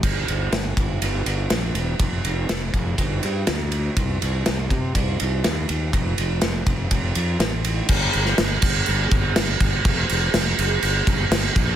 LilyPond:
<<
  \new Staff \with { instrumentName = "Fingered electric bass" } { \clef bass \time 4/4 \key g \minor \tempo 4 = 122 g,,8 g,,8 g,,8 g,,8 g,,8 g,,8 bes,,8 e,,8 | f,,8 f,,8 f,,8 f,,8 g,,8 g,8 d,4 | c,8 c,8 c,8 c8 c,8 c,8 ees,8 ees,8 | f,,8 f,,8 f,,8 f,,8 f,,8 f,8 a,,4 |
g,,8 g,,8 g,,8 g,,8 g,,8 g,,8 g,,8 g,,8 | f,,8 f,,8 f,,8 fis,,8 g,,8 g,,8 g,,8 bes,,8 | }
  \new DrumStaff \with { instrumentName = "Drums" } \drummode { \time 4/4 <cymc bd cymr>8 cymr8 <cymr sn>8 <bd cymr>8 cymr8 cymr8 <cymr sn>8 cymr8 | <bd cymr>8 cymr8 <cymr sn>8 <bd cymr>8 <bd cymr>8 cymr8 <cymr sn>8 cymr8 | <bd cymr>8 cymr8 <cymr sn>8 <bd cymr>8 <bd cymr>8 cymr8 <cymr sn>8 cymr8 | <bd cymr>8 cymr8 <cymr sn>8 <bd cymr>8 <bd cymr>8 cymr8 <cymr sn>8 cymr8 |
<cymc bd>8 cymc16 sn16 <cymc sn>8 <cymc bd>8 cymc8 <cymc bd>8 <cymc sn>8 <cymc bd>8 | <cymc bd>8 cymc8 <cymc sn>8 cymc8 cymc8 <cymc bd>8 <cymc sn>8 <cymc bd>8 | }
>>